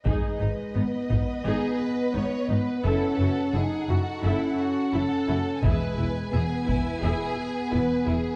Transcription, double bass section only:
X:1
M:4/4
L:1/8
Q:1/4=86
K:G#phr
V:1 name="Double bass section" clef=bass
G,,, G,,, G,,, G,,, G,,, z G,,, G,,, | F,,, F,,, F,,, F,,, F,,, z F,,, F,,, | E,,, E,,, E,,, E,,, E,,, z E,,, E,,, |]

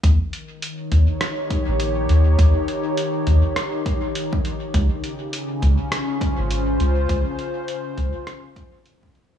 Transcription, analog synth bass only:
X:1
M:4/4
L:1/16
Q:"Swing 16ths" 1/4=102
K:Ebmix
V:1 name="Analog synth bass" clef=bass
E,, z4 z E,, z4 B,,,3 E,,2 | E,, z4 z E,, z8 z | D,, z4 z D,, z4 A,,,3 D,,2 | D,, z4 z D,, z8 z |]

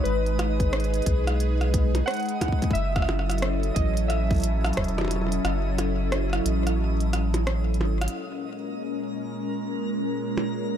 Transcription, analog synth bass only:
X:1
M:4/4
L:1/8
Q:"Swing 16ths" 1/4=89
K:Gblyd
V:1 name="Analog synth bass" clef=bass
A,,,3 _C,,3 z2 | G,,,3 =A,,,3 _F,,,2 | G,,,3 =A,,,4 _A,,, | z8 |]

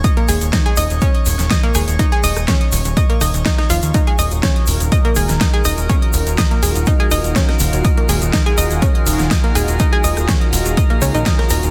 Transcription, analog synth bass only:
X:1
M:4/4
L:1/16
Q:1/4=123
K:Ebm
V:1 name="Analog synth bass" clef=bass
z2 E,,, E,,, z2 E,,, E,,, z2 E,,, E,,, z2 E,,, E,,, | z2 E,,, E,,, z2 E,,, E,,, z2 E,,, E,,, z2 E,,, E,, | z2 E,,, E,,, z2 E,,, E,,, z2 E,,, E,,, z2 E,,, E,,, | z2 E,,, E,,, z2 E,,, E,,, z2 E,,, E,,, z2 E,,, E,,, |
z2 E,,, E,,, z2 E,,, E,,, z2 E,,, E,,, z2 E,,, E,,, | z2 E,,, E,,, z2 E,,, E,,, z2 D,, B,,, z2 E,,, E,,, |]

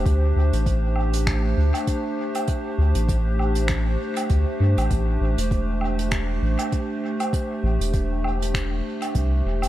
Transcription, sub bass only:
X:1
M:4/4
L:1/16
Q:"Swing 16ths" 1/4=99
K:Am
V:1 name="Sub bass" clef=bass
D,,2 D,, A,,,6- A,,, D,, z4 z | z2 D,, A,,,6- A,,, z2 D,, z G,, A,,, | A,,,2 A,,, E,,,6- E,,, A,,, z4 z | z2 A,,, E,,,6- E,,, z2 C,,2 E,,,2 |]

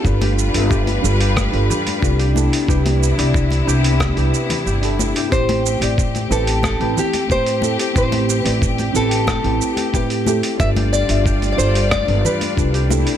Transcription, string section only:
X:1
M:4/4
L:1/8
Q:1/4=91
K:Gmix
V:1 name="String section"
[G,DFB]6- [G,DFB] [C,B,E]- | [C,B,E]8 | [A,CG]8- | [A,CG]8 |
[G,DFd]6- [G,DFd] [B,,C,E] |]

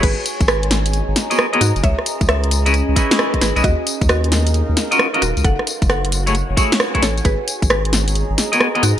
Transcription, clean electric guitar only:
X:1
M:4/4
L:1/16
Q:"Swing 16ths" 1/4=133
K:G#m
V:1 name="Clean electric guitar"
z8 z3 [B,FGAd] z [B,FGAd] z2 | z6 z [CEGBd] z2 [CEGBd]4- [CEGBd] [CEGBd] | z8 z3 [C^EFAd] z [CEFAd] z2 | z6 z [=A,EFGc] z2 [A,EFGc] z2 [A,EFGc] z2 |
z8 z3 [B,FGAd] z [B,FGAd] z2 |]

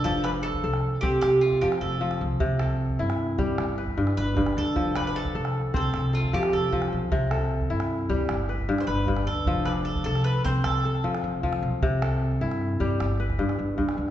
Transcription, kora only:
X:1
M:12/8
L:1/8
Q:3/8=102
K:Flyd
V:1 name="Kora"
z d3 z c3 z4 | z A3 z G2 B3 z2 | z d3 z c2 A3 z2 | z A3 z G2 B3 z2 |
z d3 z c2 A3 z2 | z A3 z G2 B3 z2 |]
V:2 name="Kora" clef=bass
F,2 z A2 C2 z F,2 F,2 | C,2 z E2 G, z2 G,,2 G,,2 | F,2 z A2 C2 z F,2 F,2 | C,2 z E2 G, z2 G,,2 G,,2 |
F,2 z A2 C2 z F,2 F,2 | C,2 z E2 G, z2 G,,2 G,,2 |]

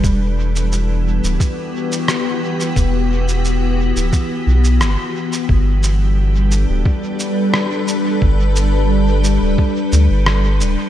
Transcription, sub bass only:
X:1
M:4/4
L:1/16
Q:1/4=88
K:G
V:1 name="Sub bass" clef=bass
E,,,6- E,,, D,,, z8 | E,,,6- E,,, D,,, z2 B,,,2 G,,, z3 | G,,,6- G,,, D,,, z8 | G,,,6- G,,, D,,, z2 D,, G,,,3 D,,, z |]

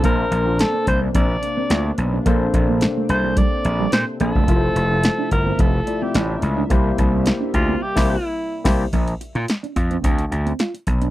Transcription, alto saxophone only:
X:1
M:4/4
L:1/16
Q:1/4=108
K:Bblyd
V:1 name="Alto saxophone"
B4 A2 c2 d6 z2 | z6 c2 d4 c2 A2- | A6 B2 A3 G3 z2 | z6 F2 G2 E4 z2 |
z16 |]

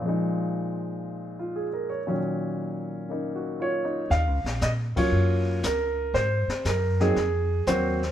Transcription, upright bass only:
X:1
M:4/4
L:1/8
Q:"Swing" 1/4=118
K:Ebm
V:1 name="Upright bass" clef=bass
z8 | z8 | (3E,, D,, B,,, B,, z G,,2 D,,2 | A,, z G,,2 F,,2 E,,2 |]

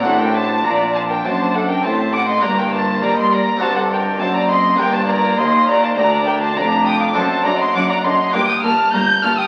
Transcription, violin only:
X:1
M:4/4
L:1/16
Q:1/4=102
K:Gm
V:1 name="Violin"
^f g a2 b2 a g a2 f g a2 d' c' | b g a2 b c' b2 a ^f g2 a b c'2 | g a b2 c'2 b a b2 g a b2 e' d' | a2 b c' d' b c'2 d' e' f'2 g'2 f' e' |]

